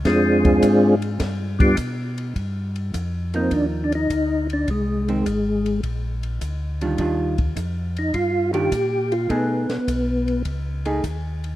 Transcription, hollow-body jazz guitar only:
X:1
M:4/4
L:1/8
Q:"Swing" 1/4=104
K:Eb
V:1 name="Hollow-body jazz guitar"
z8 | z3 [F,B,E]3 z2 | z [E,A,C] z4 z [E,G,DF] | [E,G,DF] z4 [E,G,DF] z2 |
[=A,^D^G] z4 [A,DG] z2 |]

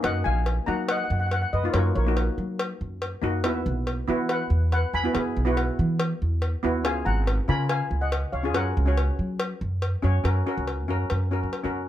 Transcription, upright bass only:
X:1
M:4/4
L:1/16
Q:1/4=141
K:F#
V:1 name="Upright bass" clef=bass
F,,2 A,,,4 F,4 F,,4 F,,2 | F,,2 A,,,4 F,4 F,,4 F,,2 | =E,,2 B,,,4 =E,4 E,,4 E,,2 | =E,,2 B,,,4 =E,4 E,,4 D,,2 |
C,,2 G,,,4 C,4 C,,4 C,,2 | F,,2 C,,4 F,4 F,,4 F,,2 | F,,2 z C,,3 F,,2 F,,3 F,2 F,,3 |]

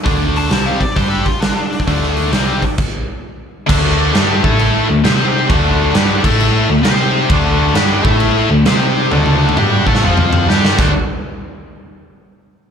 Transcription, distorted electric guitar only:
X:1
M:4/4
L:1/8
Q:"Swing" 1/4=132
K:Dmix
V:1 name="Distorted electric guitar"
[D,A,D]2 [C,G,C] z [G,DG] z3 | [D,A,D]2 [C,G,C] z4 z | [D,A,D]2 [G,DG] [A,EA]2 [D,A,] [CGc]2 | [D,A,D]2 [G,DG] [A,EA]2 [D,A,] [CGc]2 |
[D,A,D]2 [G,DG] [A,EA]2 [D,A,] [CGc]2 | [D,A,D]2 [G,DG] [A,EA] [=F,C=F]2 [G,DG] [D,A,D] | z8 |]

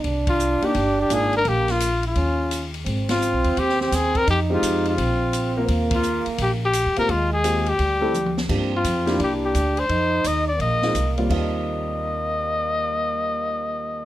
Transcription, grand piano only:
X:1
M:4/4
L:1/8
Q:"Swing" 1/4=171
K:Eb
V:1 name="Grand piano"
z3 [B,DEG] z2 [B,DEF] z | z8 | z8 | z [A,CEG]3 z3 [B,CFB]- |
[B,CFB]2 z4 z [B,CFG] | z2 [B,CFG] z2 [=A,C_F=A] z2 | [B,DFG] z2 [B,D_FG]3 z2 | z4 z [A,CEF] z [E,,G,B,CF] |
[E,,E,G,CF]8- | [E,,E,G,CF]8 |]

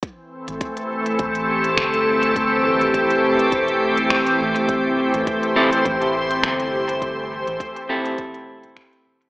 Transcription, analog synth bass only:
X:1
M:4/4
L:1/16
Q:"Swing 16ths" 1/4=103
K:Am
V:1 name="Analog synth bass" clef=bass
z3 A,,, z4 A,,,4 G,,,4- | G,,,3 A,,, z4 E,,,3 E,,, z2 A,,, z | z3 A,,, z4 A,,,4 G,,,4- | G,,,3 A,,, z4 E,,,3 E,,, z2 E,,,2 |]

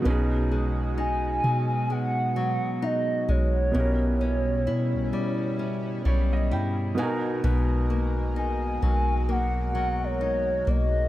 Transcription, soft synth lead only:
X:1
M:4/4
L:1/16
Q:"Swing 16ths" 1/4=65
K:B
V:1 name="Soft synth lead"
z4 g4 f4 d2 c2- | c8- c2 z6 | z4 g4 f3 c3 d2 |]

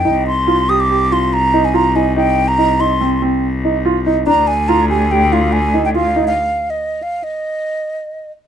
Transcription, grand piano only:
X:1
M:5/4
L:1/8
Q:1/4=142
K:Cm
V:1 name="Grand piano"
E2 F G G F2 E F E | E2 E E C C2 E F E | D2 F G G F2 E F E | z8 z2 |]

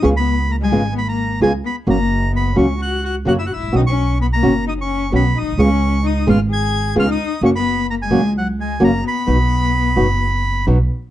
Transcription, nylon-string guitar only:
X:1
M:4/4
L:1/8
Q:1/4=130
K:B
V:1 name="Nylon-string guitar"
[C,G,B,^EG] z2 [C,G,B,EG] z2 [C,G,B,EG] z | [C,F,A,CF] z2 [C,F,A,CF] z2 [C,F,A,CF] z | [B,,D,CF] z2 [B,,D,CF] z2 [B,,D,CF] z | [C,G,B,^EG] z2 [C,G,B,EG] z2 [C,G,B,EG] z |
[C,F,A,CF] z2 [C,F,A,CF] z2 [C,F,A,CF] z | [B,,F,B,DF] z2 [B,,F,B,DF] z2 [B,,F,B,DF] z |]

